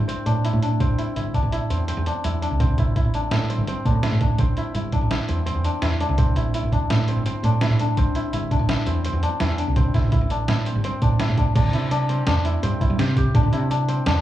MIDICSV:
0, 0, Header, 1, 4, 480
1, 0, Start_track
1, 0, Key_signature, 0, "minor"
1, 0, Tempo, 358423
1, 1074, Time_signature, 5, 2, 24, 8
1, 19033, End_track
2, 0, Start_track
2, 0, Title_t, "Kora"
2, 0, Program_c, 0, 46
2, 0, Note_on_c, 0, 62, 60
2, 0, Note_on_c, 0, 64, 70
2, 107, Note_on_c, 0, 60, 70
2, 343, Note_off_c, 0, 62, 0
2, 348, Note_on_c, 0, 62, 55
2, 591, Note_off_c, 0, 64, 0
2, 597, Note_on_c, 0, 64, 65
2, 834, Note_off_c, 0, 62, 0
2, 839, Note_on_c, 0, 62, 58
2, 1074, Note_off_c, 0, 60, 0
2, 1079, Note_on_c, 0, 60, 78
2, 1311, Note_off_c, 0, 64, 0
2, 1317, Note_on_c, 0, 64, 59
2, 1553, Note_off_c, 0, 64, 0
2, 1558, Note_on_c, 0, 64, 56
2, 1794, Note_off_c, 0, 62, 0
2, 1799, Note_on_c, 0, 62, 60
2, 2039, Note_off_c, 0, 64, 0
2, 2044, Note_on_c, 0, 64, 69
2, 2274, Note_off_c, 0, 60, 0
2, 2280, Note_on_c, 0, 60, 62
2, 2515, Note_off_c, 0, 60, 0
2, 2521, Note_on_c, 0, 60, 72
2, 2763, Note_off_c, 0, 62, 0
2, 2769, Note_on_c, 0, 62, 55
2, 2999, Note_off_c, 0, 64, 0
2, 3004, Note_on_c, 0, 64, 65
2, 3236, Note_off_c, 0, 62, 0
2, 3241, Note_on_c, 0, 62, 60
2, 3485, Note_off_c, 0, 60, 0
2, 3490, Note_on_c, 0, 60, 76
2, 3725, Note_off_c, 0, 64, 0
2, 3730, Note_on_c, 0, 64, 65
2, 3965, Note_off_c, 0, 64, 0
2, 3971, Note_on_c, 0, 64, 63
2, 4206, Note_off_c, 0, 62, 0
2, 4211, Note_on_c, 0, 62, 66
2, 4435, Note_off_c, 0, 64, 0
2, 4441, Note_on_c, 0, 64, 70
2, 4680, Note_off_c, 0, 60, 0
2, 4685, Note_on_c, 0, 60, 57
2, 4925, Note_off_c, 0, 60, 0
2, 4930, Note_on_c, 0, 60, 70
2, 5156, Note_off_c, 0, 62, 0
2, 5161, Note_on_c, 0, 62, 52
2, 5393, Note_off_c, 0, 64, 0
2, 5399, Note_on_c, 0, 64, 60
2, 5636, Note_off_c, 0, 62, 0
2, 5641, Note_on_c, 0, 62, 56
2, 5879, Note_off_c, 0, 60, 0
2, 5884, Note_on_c, 0, 60, 71
2, 6122, Note_off_c, 0, 64, 0
2, 6127, Note_on_c, 0, 64, 66
2, 6360, Note_off_c, 0, 64, 0
2, 6366, Note_on_c, 0, 64, 58
2, 6597, Note_off_c, 0, 62, 0
2, 6602, Note_on_c, 0, 62, 56
2, 6834, Note_off_c, 0, 64, 0
2, 6839, Note_on_c, 0, 64, 65
2, 7075, Note_off_c, 0, 60, 0
2, 7080, Note_on_c, 0, 60, 52
2, 7308, Note_off_c, 0, 60, 0
2, 7313, Note_on_c, 0, 60, 73
2, 7556, Note_off_c, 0, 62, 0
2, 7562, Note_on_c, 0, 62, 52
2, 7799, Note_off_c, 0, 64, 0
2, 7804, Note_on_c, 0, 64, 70
2, 8037, Note_off_c, 0, 62, 0
2, 8043, Note_on_c, 0, 62, 65
2, 8275, Note_off_c, 0, 60, 0
2, 8280, Note_on_c, 0, 60, 75
2, 8518, Note_off_c, 0, 64, 0
2, 8523, Note_on_c, 0, 64, 63
2, 8765, Note_off_c, 0, 64, 0
2, 8770, Note_on_c, 0, 64, 69
2, 9002, Note_off_c, 0, 62, 0
2, 9008, Note_on_c, 0, 62, 64
2, 9238, Note_off_c, 0, 64, 0
2, 9244, Note_on_c, 0, 64, 70
2, 9482, Note_off_c, 0, 60, 0
2, 9488, Note_on_c, 0, 60, 58
2, 9717, Note_off_c, 0, 60, 0
2, 9722, Note_on_c, 0, 60, 73
2, 9962, Note_off_c, 0, 62, 0
2, 9968, Note_on_c, 0, 62, 59
2, 10205, Note_off_c, 0, 64, 0
2, 10210, Note_on_c, 0, 64, 67
2, 10445, Note_off_c, 0, 62, 0
2, 10451, Note_on_c, 0, 62, 64
2, 10674, Note_off_c, 0, 60, 0
2, 10680, Note_on_c, 0, 60, 83
2, 10916, Note_off_c, 0, 64, 0
2, 10921, Note_on_c, 0, 64, 66
2, 11153, Note_off_c, 0, 64, 0
2, 11158, Note_on_c, 0, 64, 68
2, 11397, Note_off_c, 0, 62, 0
2, 11402, Note_on_c, 0, 62, 66
2, 11636, Note_off_c, 0, 64, 0
2, 11642, Note_on_c, 0, 64, 76
2, 11868, Note_off_c, 0, 60, 0
2, 11873, Note_on_c, 0, 60, 58
2, 12120, Note_off_c, 0, 60, 0
2, 12125, Note_on_c, 0, 60, 75
2, 12356, Note_off_c, 0, 62, 0
2, 12361, Note_on_c, 0, 62, 61
2, 12589, Note_off_c, 0, 64, 0
2, 12595, Note_on_c, 0, 64, 75
2, 12829, Note_off_c, 0, 62, 0
2, 12834, Note_on_c, 0, 62, 65
2, 13070, Note_off_c, 0, 60, 0
2, 13075, Note_on_c, 0, 60, 77
2, 13311, Note_off_c, 0, 64, 0
2, 13316, Note_on_c, 0, 64, 68
2, 13550, Note_off_c, 0, 64, 0
2, 13556, Note_on_c, 0, 64, 66
2, 13799, Note_off_c, 0, 62, 0
2, 13804, Note_on_c, 0, 62, 63
2, 14037, Note_off_c, 0, 64, 0
2, 14043, Note_on_c, 0, 64, 77
2, 14274, Note_off_c, 0, 60, 0
2, 14279, Note_on_c, 0, 60, 64
2, 14519, Note_off_c, 0, 60, 0
2, 14525, Note_on_c, 0, 60, 84
2, 14754, Note_off_c, 0, 62, 0
2, 14759, Note_on_c, 0, 62, 60
2, 14994, Note_off_c, 0, 64, 0
2, 14999, Note_on_c, 0, 64, 71
2, 15232, Note_off_c, 0, 62, 0
2, 15237, Note_on_c, 0, 62, 65
2, 15476, Note_off_c, 0, 62, 0
2, 15481, Note_on_c, 0, 62, 77
2, 15718, Note_off_c, 0, 64, 0
2, 15723, Note_on_c, 0, 64, 71
2, 15948, Note_off_c, 0, 62, 0
2, 15954, Note_on_c, 0, 62, 70
2, 16192, Note_off_c, 0, 60, 0
2, 16198, Note_on_c, 0, 60, 66
2, 16437, Note_off_c, 0, 62, 0
2, 16442, Note_on_c, 0, 62, 76
2, 16669, Note_off_c, 0, 64, 0
2, 16675, Note_on_c, 0, 64, 65
2, 16911, Note_off_c, 0, 60, 0
2, 16916, Note_on_c, 0, 60, 81
2, 17148, Note_off_c, 0, 64, 0
2, 17154, Note_on_c, 0, 64, 61
2, 17402, Note_on_c, 0, 67, 70
2, 17635, Note_off_c, 0, 67, 0
2, 17641, Note_on_c, 0, 67, 67
2, 17873, Note_off_c, 0, 62, 0
2, 17878, Note_on_c, 0, 62, 90
2, 18108, Note_off_c, 0, 64, 0
2, 18113, Note_on_c, 0, 64, 72
2, 18349, Note_off_c, 0, 62, 0
2, 18354, Note_on_c, 0, 62, 70
2, 18589, Note_off_c, 0, 60, 0
2, 18594, Note_on_c, 0, 60, 66
2, 18834, Note_off_c, 0, 62, 0
2, 18839, Note_on_c, 0, 62, 81
2, 19033, Note_off_c, 0, 60, 0
2, 19033, Note_off_c, 0, 62, 0
2, 19033, Note_off_c, 0, 64, 0
2, 19033, Note_off_c, 0, 67, 0
2, 19033, End_track
3, 0, Start_track
3, 0, Title_t, "Fretless electric bass"
3, 0, Program_c, 1, 35
3, 0, Note_on_c, 1, 31, 64
3, 174, Note_off_c, 1, 31, 0
3, 345, Note_on_c, 1, 45, 64
3, 538, Note_off_c, 1, 45, 0
3, 711, Note_on_c, 1, 45, 66
3, 902, Note_off_c, 1, 45, 0
3, 1072, Note_on_c, 1, 33, 62
3, 1263, Note_off_c, 1, 33, 0
3, 1552, Note_on_c, 1, 31, 70
3, 1838, Note_off_c, 1, 31, 0
3, 1906, Note_on_c, 1, 33, 76
3, 2100, Note_off_c, 1, 33, 0
3, 2276, Note_on_c, 1, 40, 73
3, 2561, Note_off_c, 1, 40, 0
3, 2638, Note_on_c, 1, 40, 77
3, 2827, Note_off_c, 1, 40, 0
3, 3002, Note_on_c, 1, 40, 78
3, 3285, Note_off_c, 1, 40, 0
3, 3357, Note_on_c, 1, 36, 62
3, 3642, Note_off_c, 1, 36, 0
3, 3722, Note_on_c, 1, 33, 69
3, 3910, Note_off_c, 1, 33, 0
3, 4078, Note_on_c, 1, 33, 67
3, 4363, Note_off_c, 1, 33, 0
3, 4433, Note_on_c, 1, 45, 60
3, 4720, Note_off_c, 1, 45, 0
3, 4788, Note_on_c, 1, 31, 62
3, 4982, Note_off_c, 1, 31, 0
3, 5160, Note_on_c, 1, 45, 65
3, 5349, Note_off_c, 1, 45, 0
3, 5509, Note_on_c, 1, 45, 71
3, 5703, Note_off_c, 1, 45, 0
3, 5875, Note_on_c, 1, 33, 74
3, 6066, Note_off_c, 1, 33, 0
3, 6351, Note_on_c, 1, 31, 77
3, 6639, Note_off_c, 1, 31, 0
3, 6714, Note_on_c, 1, 33, 71
3, 6906, Note_off_c, 1, 33, 0
3, 7081, Note_on_c, 1, 40, 71
3, 7365, Note_off_c, 1, 40, 0
3, 7435, Note_on_c, 1, 40, 69
3, 7627, Note_off_c, 1, 40, 0
3, 7787, Note_on_c, 1, 40, 74
3, 8076, Note_off_c, 1, 40, 0
3, 8153, Note_on_c, 1, 36, 64
3, 8440, Note_off_c, 1, 36, 0
3, 8511, Note_on_c, 1, 33, 82
3, 8704, Note_off_c, 1, 33, 0
3, 8873, Note_on_c, 1, 33, 71
3, 9160, Note_off_c, 1, 33, 0
3, 9242, Note_on_c, 1, 45, 63
3, 9525, Note_off_c, 1, 45, 0
3, 9588, Note_on_c, 1, 31, 70
3, 9782, Note_off_c, 1, 31, 0
3, 9951, Note_on_c, 1, 45, 73
3, 10144, Note_off_c, 1, 45, 0
3, 10306, Note_on_c, 1, 45, 66
3, 10501, Note_off_c, 1, 45, 0
3, 10682, Note_on_c, 1, 33, 78
3, 10870, Note_off_c, 1, 33, 0
3, 11152, Note_on_c, 1, 31, 82
3, 11439, Note_off_c, 1, 31, 0
3, 11507, Note_on_c, 1, 33, 80
3, 11701, Note_off_c, 1, 33, 0
3, 11870, Note_on_c, 1, 40, 78
3, 12157, Note_off_c, 1, 40, 0
3, 12225, Note_on_c, 1, 40, 78
3, 12419, Note_off_c, 1, 40, 0
3, 12593, Note_on_c, 1, 40, 87
3, 12879, Note_off_c, 1, 40, 0
3, 12958, Note_on_c, 1, 36, 73
3, 13242, Note_off_c, 1, 36, 0
3, 13314, Note_on_c, 1, 33, 86
3, 13505, Note_off_c, 1, 33, 0
3, 13675, Note_on_c, 1, 33, 79
3, 13960, Note_off_c, 1, 33, 0
3, 14030, Note_on_c, 1, 45, 65
3, 14317, Note_off_c, 1, 45, 0
3, 14396, Note_on_c, 1, 31, 69
3, 14585, Note_off_c, 1, 31, 0
3, 14754, Note_on_c, 1, 45, 77
3, 14945, Note_off_c, 1, 45, 0
3, 15119, Note_on_c, 1, 45, 74
3, 15307, Note_off_c, 1, 45, 0
3, 15473, Note_on_c, 1, 45, 83
3, 15569, Note_off_c, 1, 45, 0
3, 15592, Note_on_c, 1, 50, 73
3, 15688, Note_off_c, 1, 50, 0
3, 15710, Note_on_c, 1, 48, 72
3, 16280, Note_off_c, 1, 48, 0
3, 16430, Note_on_c, 1, 40, 75
3, 16811, Note_off_c, 1, 40, 0
3, 16911, Note_on_c, 1, 43, 73
3, 17102, Note_off_c, 1, 43, 0
3, 17273, Note_on_c, 1, 43, 84
3, 17368, Note_off_c, 1, 43, 0
3, 17390, Note_on_c, 1, 48, 89
3, 17770, Note_off_c, 1, 48, 0
3, 17872, Note_on_c, 1, 45, 95
3, 17967, Note_off_c, 1, 45, 0
3, 17987, Note_on_c, 1, 50, 87
3, 18084, Note_off_c, 1, 50, 0
3, 18106, Note_on_c, 1, 48, 75
3, 18676, Note_off_c, 1, 48, 0
3, 18831, Note_on_c, 1, 40, 75
3, 19033, Note_off_c, 1, 40, 0
3, 19033, End_track
4, 0, Start_track
4, 0, Title_t, "Drums"
4, 118, Note_on_c, 9, 42, 60
4, 252, Note_off_c, 9, 42, 0
4, 351, Note_on_c, 9, 42, 48
4, 485, Note_off_c, 9, 42, 0
4, 597, Note_on_c, 9, 42, 58
4, 731, Note_off_c, 9, 42, 0
4, 837, Note_on_c, 9, 42, 45
4, 971, Note_off_c, 9, 42, 0
4, 1075, Note_on_c, 9, 36, 81
4, 1077, Note_on_c, 9, 42, 63
4, 1209, Note_off_c, 9, 36, 0
4, 1211, Note_off_c, 9, 42, 0
4, 1320, Note_on_c, 9, 42, 49
4, 1454, Note_off_c, 9, 42, 0
4, 1558, Note_on_c, 9, 42, 50
4, 1692, Note_off_c, 9, 42, 0
4, 1797, Note_on_c, 9, 36, 54
4, 1801, Note_on_c, 9, 42, 44
4, 1931, Note_off_c, 9, 36, 0
4, 1935, Note_off_c, 9, 42, 0
4, 2041, Note_on_c, 9, 42, 56
4, 2175, Note_off_c, 9, 42, 0
4, 2282, Note_on_c, 9, 42, 49
4, 2416, Note_off_c, 9, 42, 0
4, 2520, Note_on_c, 9, 42, 70
4, 2654, Note_off_c, 9, 42, 0
4, 2762, Note_on_c, 9, 42, 52
4, 2896, Note_off_c, 9, 42, 0
4, 3002, Note_on_c, 9, 42, 71
4, 3136, Note_off_c, 9, 42, 0
4, 3247, Note_on_c, 9, 42, 51
4, 3381, Note_off_c, 9, 42, 0
4, 3482, Note_on_c, 9, 36, 94
4, 3483, Note_on_c, 9, 42, 71
4, 3616, Note_off_c, 9, 36, 0
4, 3617, Note_off_c, 9, 42, 0
4, 3723, Note_on_c, 9, 36, 66
4, 3723, Note_on_c, 9, 42, 53
4, 3856, Note_off_c, 9, 42, 0
4, 3857, Note_off_c, 9, 36, 0
4, 3963, Note_on_c, 9, 36, 77
4, 3964, Note_on_c, 9, 42, 58
4, 4097, Note_off_c, 9, 36, 0
4, 4098, Note_off_c, 9, 42, 0
4, 4203, Note_on_c, 9, 42, 48
4, 4337, Note_off_c, 9, 42, 0
4, 4438, Note_on_c, 9, 38, 85
4, 4438, Note_on_c, 9, 42, 61
4, 4571, Note_off_c, 9, 38, 0
4, 4571, Note_off_c, 9, 42, 0
4, 4686, Note_on_c, 9, 42, 49
4, 4820, Note_off_c, 9, 42, 0
4, 4921, Note_on_c, 9, 42, 59
4, 5055, Note_off_c, 9, 42, 0
4, 5162, Note_on_c, 9, 36, 67
4, 5165, Note_on_c, 9, 42, 48
4, 5296, Note_off_c, 9, 36, 0
4, 5299, Note_off_c, 9, 42, 0
4, 5398, Note_on_c, 9, 38, 84
4, 5398, Note_on_c, 9, 42, 57
4, 5532, Note_off_c, 9, 38, 0
4, 5532, Note_off_c, 9, 42, 0
4, 5634, Note_on_c, 9, 42, 44
4, 5639, Note_on_c, 9, 36, 60
4, 5768, Note_off_c, 9, 42, 0
4, 5772, Note_off_c, 9, 36, 0
4, 5872, Note_on_c, 9, 42, 63
4, 5877, Note_on_c, 9, 36, 89
4, 6006, Note_off_c, 9, 42, 0
4, 6011, Note_off_c, 9, 36, 0
4, 6117, Note_on_c, 9, 42, 45
4, 6251, Note_off_c, 9, 42, 0
4, 6357, Note_on_c, 9, 42, 51
4, 6491, Note_off_c, 9, 42, 0
4, 6595, Note_on_c, 9, 42, 47
4, 6597, Note_on_c, 9, 36, 54
4, 6729, Note_off_c, 9, 42, 0
4, 6731, Note_off_c, 9, 36, 0
4, 6841, Note_on_c, 9, 38, 85
4, 6841, Note_on_c, 9, 42, 61
4, 6975, Note_off_c, 9, 38, 0
4, 6975, Note_off_c, 9, 42, 0
4, 7079, Note_on_c, 9, 42, 49
4, 7213, Note_off_c, 9, 42, 0
4, 7320, Note_on_c, 9, 42, 70
4, 7454, Note_off_c, 9, 42, 0
4, 7559, Note_on_c, 9, 42, 52
4, 7693, Note_off_c, 9, 42, 0
4, 7795, Note_on_c, 9, 38, 90
4, 7795, Note_on_c, 9, 42, 66
4, 7929, Note_off_c, 9, 38, 0
4, 7929, Note_off_c, 9, 42, 0
4, 8041, Note_on_c, 9, 42, 51
4, 8174, Note_off_c, 9, 42, 0
4, 8275, Note_on_c, 9, 42, 69
4, 8280, Note_on_c, 9, 36, 89
4, 8409, Note_off_c, 9, 42, 0
4, 8414, Note_off_c, 9, 36, 0
4, 8519, Note_on_c, 9, 42, 54
4, 8653, Note_off_c, 9, 42, 0
4, 8760, Note_on_c, 9, 42, 62
4, 8894, Note_off_c, 9, 42, 0
4, 9003, Note_on_c, 9, 36, 53
4, 9007, Note_on_c, 9, 42, 47
4, 9137, Note_off_c, 9, 36, 0
4, 9141, Note_off_c, 9, 42, 0
4, 9243, Note_on_c, 9, 38, 87
4, 9243, Note_on_c, 9, 42, 64
4, 9377, Note_off_c, 9, 38, 0
4, 9377, Note_off_c, 9, 42, 0
4, 9480, Note_on_c, 9, 42, 48
4, 9614, Note_off_c, 9, 42, 0
4, 9720, Note_on_c, 9, 42, 65
4, 9853, Note_off_c, 9, 42, 0
4, 9960, Note_on_c, 9, 42, 52
4, 10094, Note_off_c, 9, 42, 0
4, 10195, Note_on_c, 9, 38, 93
4, 10195, Note_on_c, 9, 42, 63
4, 10328, Note_off_c, 9, 38, 0
4, 10328, Note_off_c, 9, 42, 0
4, 10438, Note_on_c, 9, 42, 50
4, 10572, Note_off_c, 9, 42, 0
4, 10678, Note_on_c, 9, 42, 65
4, 10679, Note_on_c, 9, 36, 87
4, 10812, Note_off_c, 9, 42, 0
4, 10813, Note_off_c, 9, 36, 0
4, 10915, Note_on_c, 9, 42, 51
4, 11049, Note_off_c, 9, 42, 0
4, 11158, Note_on_c, 9, 42, 59
4, 11292, Note_off_c, 9, 42, 0
4, 11398, Note_on_c, 9, 36, 58
4, 11401, Note_on_c, 9, 42, 49
4, 11532, Note_off_c, 9, 36, 0
4, 11535, Note_off_c, 9, 42, 0
4, 11636, Note_on_c, 9, 38, 90
4, 11636, Note_on_c, 9, 42, 64
4, 11770, Note_off_c, 9, 38, 0
4, 11770, Note_off_c, 9, 42, 0
4, 11872, Note_on_c, 9, 42, 55
4, 12006, Note_off_c, 9, 42, 0
4, 12114, Note_on_c, 9, 42, 74
4, 12248, Note_off_c, 9, 42, 0
4, 12358, Note_on_c, 9, 42, 57
4, 12492, Note_off_c, 9, 42, 0
4, 12590, Note_on_c, 9, 38, 87
4, 12590, Note_on_c, 9, 42, 66
4, 12724, Note_off_c, 9, 38, 0
4, 12724, Note_off_c, 9, 42, 0
4, 12833, Note_on_c, 9, 42, 53
4, 12967, Note_off_c, 9, 42, 0
4, 13072, Note_on_c, 9, 42, 71
4, 13074, Note_on_c, 9, 36, 94
4, 13206, Note_off_c, 9, 42, 0
4, 13208, Note_off_c, 9, 36, 0
4, 13314, Note_on_c, 9, 36, 69
4, 13316, Note_on_c, 9, 38, 31
4, 13316, Note_on_c, 9, 42, 48
4, 13448, Note_off_c, 9, 36, 0
4, 13450, Note_off_c, 9, 38, 0
4, 13450, Note_off_c, 9, 42, 0
4, 13552, Note_on_c, 9, 42, 61
4, 13555, Note_on_c, 9, 36, 86
4, 13686, Note_off_c, 9, 42, 0
4, 13689, Note_off_c, 9, 36, 0
4, 13797, Note_on_c, 9, 42, 53
4, 13930, Note_off_c, 9, 42, 0
4, 14037, Note_on_c, 9, 38, 84
4, 14037, Note_on_c, 9, 42, 62
4, 14171, Note_off_c, 9, 38, 0
4, 14171, Note_off_c, 9, 42, 0
4, 14279, Note_on_c, 9, 42, 48
4, 14413, Note_off_c, 9, 42, 0
4, 14518, Note_on_c, 9, 42, 63
4, 14652, Note_off_c, 9, 42, 0
4, 14755, Note_on_c, 9, 42, 55
4, 14756, Note_on_c, 9, 36, 64
4, 14889, Note_off_c, 9, 42, 0
4, 14890, Note_off_c, 9, 36, 0
4, 14993, Note_on_c, 9, 38, 88
4, 14993, Note_on_c, 9, 42, 72
4, 15127, Note_off_c, 9, 38, 0
4, 15127, Note_off_c, 9, 42, 0
4, 15233, Note_on_c, 9, 42, 57
4, 15234, Note_on_c, 9, 36, 66
4, 15367, Note_off_c, 9, 42, 0
4, 15368, Note_off_c, 9, 36, 0
4, 15474, Note_on_c, 9, 36, 99
4, 15475, Note_on_c, 9, 42, 73
4, 15475, Note_on_c, 9, 49, 86
4, 15608, Note_off_c, 9, 36, 0
4, 15609, Note_off_c, 9, 42, 0
4, 15609, Note_off_c, 9, 49, 0
4, 15712, Note_on_c, 9, 42, 57
4, 15846, Note_off_c, 9, 42, 0
4, 15953, Note_on_c, 9, 42, 72
4, 16087, Note_off_c, 9, 42, 0
4, 16193, Note_on_c, 9, 42, 50
4, 16326, Note_off_c, 9, 42, 0
4, 16427, Note_on_c, 9, 38, 90
4, 16427, Note_on_c, 9, 42, 68
4, 16561, Note_off_c, 9, 38, 0
4, 16561, Note_off_c, 9, 42, 0
4, 16670, Note_on_c, 9, 42, 59
4, 16804, Note_off_c, 9, 42, 0
4, 16916, Note_on_c, 9, 42, 79
4, 17049, Note_off_c, 9, 42, 0
4, 17154, Note_on_c, 9, 36, 70
4, 17157, Note_on_c, 9, 42, 54
4, 17288, Note_off_c, 9, 36, 0
4, 17291, Note_off_c, 9, 42, 0
4, 17398, Note_on_c, 9, 38, 85
4, 17398, Note_on_c, 9, 42, 67
4, 17532, Note_off_c, 9, 38, 0
4, 17532, Note_off_c, 9, 42, 0
4, 17632, Note_on_c, 9, 36, 67
4, 17633, Note_on_c, 9, 42, 56
4, 17766, Note_off_c, 9, 36, 0
4, 17767, Note_off_c, 9, 42, 0
4, 17872, Note_on_c, 9, 36, 102
4, 17874, Note_on_c, 9, 42, 73
4, 18006, Note_off_c, 9, 36, 0
4, 18008, Note_off_c, 9, 42, 0
4, 18115, Note_on_c, 9, 42, 55
4, 18249, Note_off_c, 9, 42, 0
4, 18359, Note_on_c, 9, 42, 62
4, 18493, Note_off_c, 9, 42, 0
4, 18595, Note_on_c, 9, 42, 54
4, 18729, Note_off_c, 9, 42, 0
4, 18833, Note_on_c, 9, 38, 100
4, 18833, Note_on_c, 9, 42, 77
4, 18967, Note_off_c, 9, 38, 0
4, 18967, Note_off_c, 9, 42, 0
4, 19033, End_track
0, 0, End_of_file